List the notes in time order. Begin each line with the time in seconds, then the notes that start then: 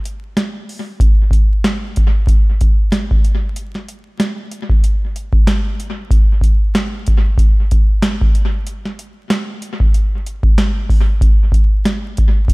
0.05 closed hi-hat
0.37 snare, closed hi-hat
0.69 open hi-hat
1.00 kick, closed hi-hat
1.31 kick, closed hi-hat
1.64 snare, closed hi-hat
1.96 kick, closed hi-hat
2.27 kick, closed hi-hat
2.61 kick, closed hi-hat
2.92 snare, closed hi-hat
3.11 kick
3.25 closed hi-hat
3.56 closed hi-hat
3.75 snare
3.88 closed hi-hat
4.20 snare, closed hi-hat
4.51 closed hi-hat
4.70 kick
4.84 closed hi-hat
5.16 closed hi-hat
5.33 kick
5.47 snare, closed hi-hat
5.80 closed hi-hat
6.11 kick, closed hi-hat
6.41 kick, closed hi-hat
6.75 snare, closed hi-hat
7.07 kick, closed hi-hat
7.38 kick, closed hi-hat
7.71 kick, closed hi-hat
8.02 snare, closed hi-hat
8.21 kick
8.35 closed hi-hat
8.67 closed hi-hat
8.85 snare
8.99 closed hi-hat
9.30 snare, closed hi-hat
9.62 closed hi-hat
9.80 kick
9.94 closed hi-hat
10.27 closed hi-hat
10.43 kick
10.58 snare, closed hi-hat
10.90 kick, open hi-hat
11.21 kick, closed hi-hat
11.52 kick, closed hi-hat
11.85 snare, closed hi-hat
12.17 kick, closed hi-hat
12.48 kick, closed hi-hat